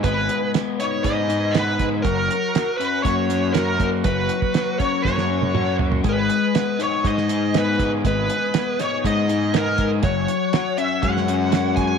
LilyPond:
<<
  \new Staff \with { instrumentName = "Tonewheel organ" } { \time 4/4 \key gis \minor \tempo 4 = 120 <b' dis'' gis'' b''>1 | <cis'' fis'' ais'' cis'''>1~ | <cis'' fis'' ais'' cis'''>1 | <dis'' gis'' dis'''>1~ |
<dis'' gis'' dis'''>1 | <cis'' fis'' cis'''>1 | }
  \new Staff \with { instrumentName = "Lead electric guitar" } { \time 4/4 \key gis \minor b'4 r8 cis''8 dis''4 b'8. r16 | ais'4. b'8 cis''4 ais'8. r16 | b'4. cis''8 cis''4. r8 | b'4. cis''8 dis''4 b'8. r16 |
b'4. cis''8 dis''4 ais'8. r16 | cis''4. e''8 fis''4. gis''8 | }
  \new Staff \with { instrumentName = "Overdriven electric guitar" } { \time 4/4 \key gis \minor <gis b dis'>4 b8 dis'8 gis8 dis'8 b8 gis8 | fis4 fis'8 cis'8 ais8 cis'8 fis'8 ais8 | fis4 fis'8 cis'8 ais8 cis'8 fis'8 ais8 | gis4 b8 dis'8 gis8 dis'8 b8 gis8 |
gis4 b8 dis'8 gis8 dis'8 b8 gis8 | fis4 fis'8 cis'8 gis8 cis'8 fis'8 gis8 | }
  \new Staff \with { instrumentName = "Picked electric bass" } { \clef bass \time 4/4 \key gis \minor gis,,8 r4. gis,2 | fis,,8 r4. fis,2 | fis,,8 r4. fis,2 | gis,,8 r4. gis,2 |
gis,,8 r4. gis,2 | fis,,8 r4. fis,2 | }
  \new DrumStaff \with { instrumentName = "Drums" } \drummode { \time 4/4 <hh bd>8 hh8 <hh sn>8 hh8 <hh bd>8 hh8 <hh sn>8 <hh bd>8 | <hh bd>8 hh8 <hh sn>8 hh8 <hh bd>8 hh8 <hh sn>8 <hh bd>8 | <hh bd>8 hh16 bd16 <hh sn>8 <hh bd>8 <bd sn>16 sn8 tommh16 toml8 tomfh16 tomfh16 | <hh bd>8 hh8 <hh sn>8 hh8 <hh bd>16 sn16 hh8 <hh sn>8 <hh bd>8 |
<hh bd>8 hh8 <hh sn>8 <hh sn>8 <hh bd>8 hh8 <hh sn>8 <hh bd>8 | <hh bd>8 hh8 <hh sn>8 hh8 <hh bd>16 sn16 hh8 <hh sn>8 <hh bd>8 | }
>>